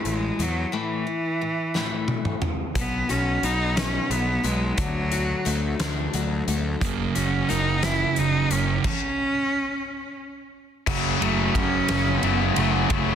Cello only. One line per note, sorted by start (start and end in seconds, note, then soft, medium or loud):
0.06 0.43 G#3 medium
0.42 0.76 F#3 medium
0.75 2.43 E3 medium
2.77 3.12 B3 loud
3.10 3.46 C#4 medium
3.44 3.78 D#4 medium
3.76 4.12 C#4 medium
4.10 4.45 B3 medium
4.43 4.78 G#3 medium
4.76 5.79 F#3 medium
6.81 7.16 A#3 medium
7.15 7.50 C#4 loud
7.49 7.86 D#4 loud
7.84 8.20 E4 loud
8.18 8.54 D#4 loud
8.52 8.83 C#4 medium
8.84 10.15 C#4 loud
11.19 11.54 A3 medium
11.53 12.20 C#4 loud
12.19 12.51 B3 medium
12.52 12.85 A3 medium
12.88 13.15 A3 medium